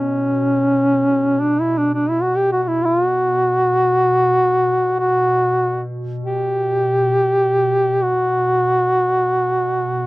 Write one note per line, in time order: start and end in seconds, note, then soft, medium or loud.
0.00 4.70 B2 soft
0.00 1.42 C#4 medium
1.40 1.62 D4 medium
1.61 1.79 E4 medium
1.78 1.94 D4 medium
1.94 2.11 D4 medium
2.10 2.24 E4 medium
2.22 2.38 F#4 medium
2.37 2.52 G4 medium
2.52 2.64 F#4 medium
2.64 2.69 F#4 medium
2.68 2.87 E4 medium
2.85 3.05 F4 medium
3.05 4.99 F#4 medium
4.71 10.07 B2 soft
5.00 5.85 F#4 medium
6.24 8.04 G4 medium
8.03 10.07 F#4 medium